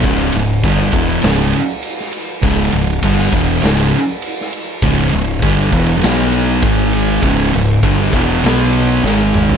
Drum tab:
RD |x-x-x-x-x-x-x-x-|x-x-x-x-x-x-x-x-|x-x-x-x-x-x-x-x-|x-x-x-x-x-x-----|
SD |--------o----o--|--------o----o--|--------o-------|--------o---o---|
T2 |----------------|----------------|----------------|--------------o-|
FT |----------------|----------------|----------------|---------------o|
BD |o---o-o---------|o---o-o---------|o---o-o-----o---|o---o-o---------|